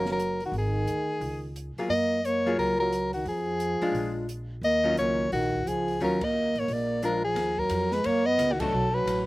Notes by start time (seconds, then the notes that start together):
Already playing: F#1 D#3 A#3 C#4
0.06 snare
0.10 F#3 A#4
0.19 closed hi-hat
0.40 open hi-hat
0.45 D#3 F#4
0.52 G#1, open hi-hat
0.57 D#3 G#4
0.85 D2, closed hi-hat
1.21 C#2, open hi-hat
1.56 closed hi-hat
1.77 F#3 A#3 F4 G#4, muted upright bass stroke, open hi-hat
1.89 F#2 A#3 D#5, open hi-hat
2.25 A#3 C#5, closed hi-hat
2.46 F#3 A#3 F4 G#4
2.57 C#2 F#3 A#4, open hi-hat
2.79 F#3 A#4
2.93 closed hi-hat
3.13 D#3 F#4, open hi-hat
3.25 F2 F3 G#4, open hi-hat
3.60 closed hi-hat
3.81 G#3 D4 F4, muted upright bass stroke, open hi-hat
3.92 A#1, open hi-hat
4.29 closed hi-hat
4.61 D#2 A#3 D#5, open hi-hat
4.84 D#3 F#3 C#4 F4
4.97 C#2 A#3 C#5, closed hi-hat
5.32 A#1 D#3 F#4, open hi-hat
5.53 kick
5.66 C#2 F3 G#4, closed hi-hat
5.88 open hi-hat
6.00 D#2 D#3 F#3 C#4 F4 A#4, open hi-hat
6.21 A#3 D#5, kick, ride
6.54 A1 A#3, open hi-hat
6.59 C#5
6.68 A#1 A#3, open hi-hat
6.73 D5
7.03 F3 G#3 D4 F4 A#4, closed hi-hat
7.24 F3 G#4
7.35 D#2, snare, ride
7.57 F#3 A#4, kick
7.69 F2, hi-hat pedal, ride
7.91 G#3 B4, snare
8.04 F#2 A#3 C#5, ride
8.26 B3 D#5
8.38 C#2, hi-hat pedal, ride
8.52 D#3 F#4
8.60 F#3 A3 D4 F#4 A4, kick, crash
8.72 B1
8.92 F#3 B4
9.05 A1, hi-hat pedal, ride